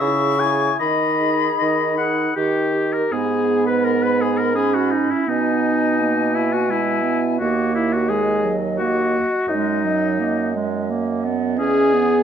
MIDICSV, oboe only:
0, 0, Header, 1, 2, 480
1, 0, Start_track
1, 0, Key_signature, 5, "minor"
1, 0, Tempo, 798935
1, 484, Time_signature, 3, 2, 24, 8
1, 966, Tempo, 748130
1, 2406, Tempo, 717703
1, 3846, Tempo, 696864
1, 8134, End_track
2, 0, Start_track
2, 0, Title_t, "Oboe"
2, 0, Program_c, 0, 68
2, 0, Note_on_c, 0, 76, 71
2, 237, Note_on_c, 0, 80, 62
2, 246, Note_off_c, 0, 76, 0
2, 474, Note_off_c, 0, 80, 0
2, 478, Note_on_c, 0, 75, 61
2, 908, Note_off_c, 0, 75, 0
2, 956, Note_on_c, 0, 75, 61
2, 1190, Note_off_c, 0, 75, 0
2, 1200, Note_on_c, 0, 78, 62
2, 1443, Note_off_c, 0, 78, 0
2, 1449, Note_on_c, 0, 67, 60
2, 1814, Note_on_c, 0, 70, 53
2, 1824, Note_off_c, 0, 67, 0
2, 1934, Note_on_c, 0, 68, 64
2, 1943, Note_off_c, 0, 70, 0
2, 2283, Note_off_c, 0, 68, 0
2, 2286, Note_on_c, 0, 71, 53
2, 2401, Note_on_c, 0, 70, 62
2, 2411, Note_off_c, 0, 71, 0
2, 2520, Note_on_c, 0, 71, 56
2, 2530, Note_off_c, 0, 70, 0
2, 2645, Note_on_c, 0, 68, 51
2, 2655, Note_off_c, 0, 71, 0
2, 2753, Note_on_c, 0, 70, 52
2, 2763, Note_off_c, 0, 68, 0
2, 2871, Note_off_c, 0, 70, 0
2, 2875, Note_on_c, 0, 68, 62
2, 2998, Note_on_c, 0, 66, 52
2, 3008, Note_off_c, 0, 68, 0
2, 3116, Note_on_c, 0, 63, 48
2, 3126, Note_off_c, 0, 66, 0
2, 3245, Note_on_c, 0, 64, 50
2, 3255, Note_off_c, 0, 63, 0
2, 3365, Note_on_c, 0, 63, 59
2, 3375, Note_off_c, 0, 64, 0
2, 4086, Note_on_c, 0, 64, 48
2, 4096, Note_off_c, 0, 63, 0
2, 4206, Note_on_c, 0, 66, 55
2, 4216, Note_off_c, 0, 64, 0
2, 4329, Note_on_c, 0, 64, 59
2, 4339, Note_off_c, 0, 66, 0
2, 4683, Note_off_c, 0, 64, 0
2, 4801, Note_on_c, 0, 66, 54
2, 5041, Note_off_c, 0, 66, 0
2, 5047, Note_on_c, 0, 64, 51
2, 5171, Note_on_c, 0, 66, 54
2, 5181, Note_off_c, 0, 64, 0
2, 5283, Note_on_c, 0, 68, 65
2, 5293, Note_off_c, 0, 66, 0
2, 5595, Note_off_c, 0, 68, 0
2, 5760, Note_on_c, 0, 66, 64
2, 6218, Note_off_c, 0, 66, 0
2, 6240, Note_on_c, 0, 63, 60
2, 6958, Note_off_c, 0, 63, 0
2, 7682, Note_on_c, 0, 68, 72
2, 8134, Note_off_c, 0, 68, 0
2, 8134, End_track
0, 0, End_of_file